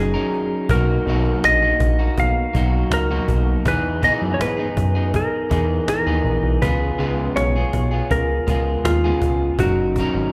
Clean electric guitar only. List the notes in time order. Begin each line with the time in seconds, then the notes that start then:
Already playing: F#3 C#4 D#4 A#4
0.14 F#3 C#4 D#4 A#4
0.70 F#3 A#3 D#4 F#4
1.07 B2 F#3 A#3 D#4 F#4
1.62 A#3 D#4 F#4
1.99 A#3 D#4 F#4
2.54 F#3 A#3 D#4 F#4
3.11 B2 F#3 A#3 D#4 F#4
3.66 E3 B3 D#4 G#4
4.02 E3 B3 D#4 G#4
4.57 B3 D#4 G#4
4.95 B3 D#4 G#4
5.50 E3 B3 D#4 G#4
6.07 E3 B3 D#4 G#4
6.61 G#3 B3 F4 G#4
6.99 C#3 G#3 B3 F4 G#4
7.56 B3 F4 G#4
7.91 B3 F4 G#4
8.47 G#3 B3 F4 G#4
9.04 C#3 G#3 B3 F4 G#4
9.60 F#3 C#4 D#4 A#4
9.98 F#3 C#4 D#4 A#4